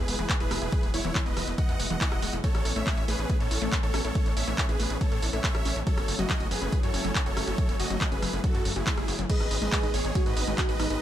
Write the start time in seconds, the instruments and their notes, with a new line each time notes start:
Already playing: analog synth pad G#3 B3 E4, supersaw synth G#4 B4
0.08 analog synth bass E1, synth arpeggio sound B3, open hi-hat
0.19 analog synth bass E1, synth arpeggio sound E3, closed hi-hat
0.30 kick, clap, closed hi-hat
0.40 analog synth bass E1, synth arpeggio sound E4, supersaw synth G#4 B4, closed hi-hat
0.51 analog synth bass E1, synth arpeggio sound G#3, cross-stick, open hi-hat
0.62 analog synth bass E1, synth arpeggio sound E4, supersaw synth G#4 B4, closed hi-hat
0.72 synth arpeggio sound E3, kick, closed hi-hat
0.83 analog synth bass E1, closed hi-hat
0.94 analog synth bass E1, supersaw synth E4 C#5, synth arpeggio sound E4, open hi-hat
1.05 analog synth bass E1, synth arpeggio sound E3, closed hi-hat
1.15 synth arpeggio sound E3, kick, clap, closed hi-hat
1.26 analog synth bass E1, synth arpeggio sound B3, supersaw synth B4 D#5, closed hi-hat
1.37 analog synth bass E1, synth arpeggio sound E3, cross-stick, open hi-hat
1.47 analog synth bass E1, closed hi-hat
1.58 synth arpeggio sound E3, supersaw synth D#5 F#5, kick, closed hi-hat
1.69 analog synth bass E2, synth arpeggio sound E4, closed hi-hat
1.80 analog synth bass E1, synth arpeggio sound B3, open hi-hat
1.90 analog synth bass E1, synth arpeggio sound E3, supersaw synth D#5 F#5, closed hi-hat
2.01 synth arpeggio sound E4, kick, clap, closed hi-hat
2.12 analog synth bass E1, synth arpeggio sound E4, cross-stick, closed hi-hat
2.22 analog synth bass E1, synth arpeggio sound G#3, open hi-hat
2.33 analog synth bass E1, synth arpeggio sound E4, closed hi-hat
2.44 synth arpeggio sound A3, analog synth pad A3 C#4, supersaw synth A4 C#5, kick, closed hi-hat
2.55 analog synth bass A1, cross-stick, closed hi-hat
2.65 analog synth bass A1, synth arpeggio sound A4, open hi-hat
2.76 analog synth bass A1, synth arpeggio sound A3, supersaw synth C#5 E5, closed hi-hat
2.87 synth arpeggio sound A3, kick, clap, closed hi-hat
2.97 analog synth bass A1, synth arpeggio sound E4, closed hi-hat
3.08 analog synth bass A1, synth arpeggio sound A3, supersaw synth G#4 B4, open hi-hat
3.19 analog synth bass A1, closed hi-hat
3.30 synth arpeggio sound A3, kick, closed hi-hat
3.40 analog synth bass A2, synth arpeggio sound A4, supersaw synth A4 C#5, closed hi-hat
3.51 analog synth bass A1, synth arpeggio sound E4, open hi-hat
3.62 analog synth bass A1, synth arpeggio sound A3, closed hi-hat
3.72 synth arpeggio sound A4, kick, clap, closed hi-hat
3.83 analog synth bass A1, supersaw synth A4 C#5, synth arpeggio sound A4, closed hi-hat
3.94 analog synth bass A1, synth arpeggio sound C#4, cross-stick, open hi-hat
4.05 analog synth bass A1, supersaw synth A4 C#5, synth arpeggio sound A4, closed hi-hat
4.15 synth arpeggio sound A3, kick, closed hi-hat
4.26 analog synth bass A1, closed hi-hat
4.37 analog synth bass A1, synth arpeggio sound A4, supersaw synth C#5 E5, open hi-hat
4.47 analog synth bass A1, synth arpeggio sound A3, closed hi-hat
4.58 synth arpeggio sound A3, kick, clap, closed hi-hat
4.69 analog synth bass A1, synth arpeggio sound E4, supersaw synth G#4 B4, closed hi-hat
4.80 analog synth bass A1, synth arpeggio sound A3, open hi-hat
4.90 analog synth bass A1, closed hi-hat
5.01 synth arpeggio sound A3, supersaw synth A4 C#5, kick, closed hi-hat
5.12 analog synth bass A2, synth arpeggio sound A4, closed hi-hat
5.22 analog synth bass A1, synth arpeggio sound E4, open hi-hat
5.33 analog synth bass A1, synth arpeggio sound A3, supersaw synth C#5 E5, closed hi-hat
5.44 synth arpeggio sound A4, kick, clap, closed hi-hat
5.55 analog synth bass A1, synth arpeggio sound A4, cross-stick, closed hi-hat
5.65 analog synth bass A1, synth arpeggio sound C#4, open hi-hat
5.76 analog synth bass A1, synth arpeggio sound A4
5.87 synth arpeggio sound F#3, analog synth pad F#3 A3 C#4 E4 G#5, supersaw synth A4 C#5, kick, closed hi-hat
5.98 analog synth bass F#1, cross-stick, closed hi-hat
6.08 analog synth bass F#1, synth arpeggio sound F#4, open hi-hat
6.19 analog synth bass F#1, synth arpeggio sound F#3, supersaw synth F#4 D#5, closed hi-hat
6.30 synth arpeggio sound F#3, kick, clap, closed hi-hat
6.40 analog synth bass F#1, synth arpeggio sound C#4, closed hi-hat
6.51 analog synth bass F#1, synth arpeggio sound F#3, supersaw synth G#4 B4, open hi-hat
6.62 analog synth bass F#1, closed hi-hat
6.72 synth arpeggio sound F#3, kick, closed hi-hat
6.83 analog synth bass F#2, synth arpeggio sound F#4, supersaw synth A4 C#5, closed hi-hat
6.94 analog synth bass F#1, synth arpeggio sound C#4, open hi-hat
7.05 analog synth bass F#1, synth arpeggio sound F#3, closed hi-hat
7.15 synth arpeggio sound F#4, kick, clap, closed hi-hat
7.26 analog synth bass F#1, synth arpeggio sound F#4, supersaw synth A4 C#5, closed hi-hat
7.37 analog synth bass F#1, synth arpeggio sound A3, cross-stick, open hi-hat
7.47 analog synth bass F#1, synth arpeggio sound F#4, supersaw synth A4 C#5, closed hi-hat
7.58 synth arpeggio sound F#3, kick, closed hi-hat
7.69 analog synth bass F#1, closed hi-hat
7.80 analog synth bass F#1, synth arpeggio sound F#4, supersaw synth F#4 D#5, open hi-hat
7.90 analog synth bass F#1, synth arpeggio sound F#3, closed hi-hat
8.01 synth arpeggio sound F#3, kick, clap, closed hi-hat
8.12 analog synth bass F#1, synth arpeggio sound C#4, supersaw synth G#4 B4, closed hi-hat
8.22 analog synth bass F#1, synth arpeggio sound F#3, cross-stick, open hi-hat
8.33 analog synth bass F#1, closed hi-hat
8.44 synth arpeggio sound F#3, supersaw synth F#4 A4, kick, closed hi-hat
8.55 analog synth bass F#2, synth arpeggio sound F#4, closed hi-hat
8.65 analog synth bass F#1, synth arpeggio sound F#2, open hi-hat
8.76 analog synth bass F#1, supersaw synth E4 G#4, synth arpeggio sound F#4, closed hi-hat
8.87 synth arpeggio sound A3, kick, clap, closed hi-hat
8.97 analog synth bass F#1, synth arpeggio sound G#3, cross-stick, closed hi-hat
9.08 analog synth bass F#1, synth arpeggio sound F#4, open hi-hat
9.19 analog synth bass F#1, synth arpeggio sound F#3, closed hi-hat
9.30 synth arpeggio sound G#3, analog synth pad G#3 B3 D#4, soft synth lead G#4, supersaw synth B4 D#5, kick, closed hi-hat, crash, ride
9.40 analog synth bass G#1, cross-stick, closed hi-hat
9.51 analog synth bass G#1, synth arpeggio sound G#4, open hi-hat
9.62 analog synth bass G#1, synth arpeggio sound G#3, supersaw synth B4 D#5, closed hi-hat
9.72 synth arpeggio sound G#3, kick, clap, closed hi-hat, ride
9.83 analog synth bass G#1, synth arpeggio sound D#4, closed hi-hat
9.94 analog synth bass G#1, synth arpeggio sound G#3, supersaw synth G#4 C#5, open hi-hat
10.05 analog synth bass G#1, closed hi-hat
10.15 synth arpeggio sound G#3, soft synth lead F#4, kick, closed hi-hat, ride
10.26 analog synth bass G#2, synth arpeggio sound G#4, supersaw synth B4 D#5, closed hi-hat
10.37 analog synth bass G#1, synth arpeggio sound D#4, open hi-hat
10.47 analog synth bass G#1, synth arpeggio sound G#3
10.58 kick, clap, closed hi-hat, ride
10.69 analog synth bass G#1, synth arpeggio sound G#4, supersaw synth B4 D#5, closed hi-hat
10.80 analog synth bass G#1, synth arpeggio sound B3, soft synth lead D#4, cross-stick, open hi-hat
10.90 analog synth bass G#1, synth arpeggio sound G#4, supersaw synth B4 D#5, closed hi-hat